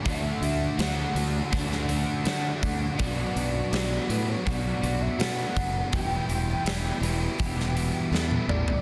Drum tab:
HH |o-o-o-o-o-o-o-o-|o-o-o-o-o-o-o-o-|o-o-o-o-o-o-----|
SD |----o----o--o---|----o-------o---|----o----o--o---|
T1 |----------------|----------------|-------------o--|
T2 |----------------|----------------|--------------o-|
FT |----------------|----------------|---------------o|
BD |o-------o-----o-|o-------o-----o-|o-------o-------|